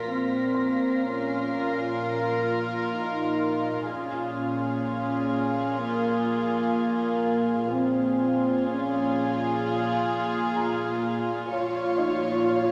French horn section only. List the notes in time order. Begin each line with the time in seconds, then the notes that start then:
0.07 C4
1.04 C#4
2.95 D#4
3.92 C#4
5.79 A#3
7.70 C4
8.65 C#4
11.50 F4